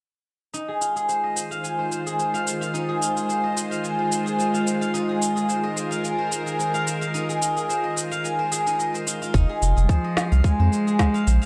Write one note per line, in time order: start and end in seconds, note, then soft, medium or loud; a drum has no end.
0.53 9.30 D#3 medium
0.53 9.30 G#3 medium
0.53 2.73 D#4 medium
0.53 9.30 F4 medium
0.53 4.90 C5 medium
0.53 shaker soft
0.68 0.96 G#4 medium
0.81 3.01 F4 medium
0.81 shaker medium
0.96 2.06 G#4 medium
0.96 shaker soft
1.09 1.35 C5 medium
1.09 shaker soft
1.24 3.02 D#5 medium
1.36 1.78 C5 medium
1.36 shaker medium
1.51 2.33 F5 medium
1.51 shaker soft
1.63 3.13 G#5 medium
1.63 shaker soft
1.79 1.91 C5 medium
1.91 2.19 C5 medium
1.91 shaker medium
2.06 2.88 G#4 medium
2.06 shaker soft
2.19 2.46 C5 medium
2.19 shaker soft
2.34 2.61 F5 medium
2.34 shaker soft
2.47 3.28 C5 medium
2.47 shaker medium
2.61 3.71 F5 medium
2.61 shaker soft
2.74 4.93 D#4 medium
2.74 shaker soft
2.89 3.16 G#4 medium
3.01 5.21 F4 medium
3.01 shaker medium
3.16 4.25 G#4 medium
3.16 shaker soft
3.29 3.56 C5 medium
3.29 shaker soft
3.44 5.22 D#5 medium
3.56 3.98 C5 medium
3.56 shaker medium
3.71 4.53 F5 medium
3.71 shaker soft
3.84 5.34 G#5 medium
3.84 shaker soft
3.99 4.11 C5 medium
4.11 4.38 C5 medium
4.11 shaker medium
4.26 5.09 G#4 medium
4.26 shaker soft
4.38 4.66 C5 medium
4.38 shaker soft
4.54 4.81 F5 medium
4.54 shaker soft
4.66 5.48 C5 medium
4.66 shaker medium
4.81 5.90 F5 medium
4.81 shaker soft
4.94 7.14 D#4 loud
4.94 9.30 A#4 medium
4.94 shaker soft
5.09 5.35 G#4 medium
5.21 7.41 F4 medium
5.21 shaker medium
5.36 6.46 G#4 medium
5.36 shaker soft
5.49 5.76 C5 medium
5.49 shaker soft
5.63 7.42 D#5 medium
5.76 6.18 C5 medium
5.76 shaker medium
5.91 6.74 F5 medium
5.91 shaker soft
6.04 7.54 G#5 medium
6.04 shaker soft
6.18 6.31 C5 medium
6.31 6.59 C5 medium
6.31 shaker medium
6.46 7.29 G#4 medium
6.46 shaker soft
6.59 6.86 C5 medium
6.59 shaker soft
6.74 7.01 F5 medium
6.74 shaker soft
6.87 7.69 C5 medium
6.87 shaker medium
7.01 8.11 F5 medium
7.01 shaker soft
7.14 8.66 D#4 medium
7.14 shaker soft
7.29 7.56 G#4 medium
7.29 shaker soft
7.42 9.06 F4 medium
7.42 shaker medium
7.57 8.51 G#4 medium
7.57 shaker soft
7.69 7.96 C5 medium
7.69 shaker soft
7.84 8.79 D#5 medium
7.96 8.38 C5 medium
7.96 shaker medium
8.11 9.78 F5 medium
8.11 shaker soft
8.24 9.74 G#5 medium
8.24 shaker soft
8.39 8.94 C5 medium
8.52 9.49 G#4 medium
8.52 shaker medium
8.66 9.34 D#4 medium
8.66 shaker soft
8.79 10.04 D#5 medium
8.79 shaker soft
8.94 9.89 C5 medium
8.94 shaker soft
9.07 9.21 F4 medium
9.07 shaker medium
9.22 9.61 F4 medium
9.22 shaker soft
9.34 9.46 F1 loud
9.34 11.46 D#4 medium
9.34 kick medium
9.34 shaker soft
9.49 9.76 G#4 medium
9.62 9.73 F1 medium
9.62 11.46 F4 medium
9.62 shaker medium
9.77 9.86 F1 medium
9.77 10.87 G#4 medium
9.77 shaker soft
9.83 9.92 G3 medium
9.89 10.44 F3 medium
9.89 10.16 C5 medium
9.89 kick medium
9.89 shaker soft
10.04 11.46 D#5 medium
10.17 10.59 C5 medium
10.17 snare medium
10.17 shaker medium
10.32 10.41 C2 medium
10.32 11.14 F5 medium
10.32 shaker soft
10.44 11.46 G#3 medium
10.44 11.46 G#5 medium
10.44 kick medium
10.44 shaker soft
10.59 10.69 F2 medium
10.59 10.72 C5 medium
10.72 10.99 C5 medium
10.72 shaker medium
10.87 11.46 G#4 medium
10.87 shaker soft
10.99 11.26 C5 medium
10.99 kick loud
10.99 snare medium
10.99 shaker soft
11.14 11.41 F5 loud
11.14 shaker soft
11.27 11.39 A#1 medium
11.27 11.46 C5 medium
11.27 shaker medium
11.42 11.46 F5 medium
11.42 shaker soft